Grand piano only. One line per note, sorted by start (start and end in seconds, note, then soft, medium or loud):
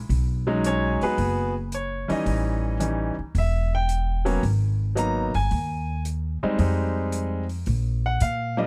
0.47 1.15 F#3 medium
0.47 1.15 G#3 medium
0.47 0.66 C#4 medium
0.47 1.15 D#4 medium
0.66 1.02 C#4 medium
0.66 1.02 C#5 medium
1.03 1.53 B3 medium
1.03 1.53 F#4 medium
1.03 1.53 G#4 medium
1.03 1.52 B4 medium
1.74 2.10 C#5 medium
2.08 2.77 E3 medium
2.08 2.76 G3 medium
2.08 2.77 C#4 medium
2.08 2.77 D#4 medium
2.08 2.77 D#5 medium
2.80 3.14 E3 soft
2.80 3.14 G3 soft
2.80 3.14 C#4 soft
2.80 3.14 D#4 medium
3.38 3.73 E5 medium
3.75 4.40 G5 medium
4.25 4.40 F#3 medium
4.25 4.41 A#3 medium
4.25 4.41 B3 soft
4.25 4.41 C#4 medium
4.95 5.29 F#3 medium
4.95 5.30 A#3 soft
4.95 5.30 B3 soft
4.95 5.30 D#4 medium
4.95 5.34 A#5 medium
5.35 6.01 G#5 medium
6.43 6.57 G3 medium
6.43 6.57 G#3 medium
6.43 6.58 C4 medium
6.43 6.58 D#4 medium
6.59 7.43 G3 medium
6.59 7.43 G#3 medium
6.59 7.43 C4 medium
6.59 7.43 D#4 medium
8.06 8.21 F#5 medium
8.22 8.57 F5 medium
8.57 8.67 F3 medium
8.57 8.67 G3 medium
8.57 8.67 A#3 medium
8.57 8.67 D4 medium
8.57 8.67 D#5 medium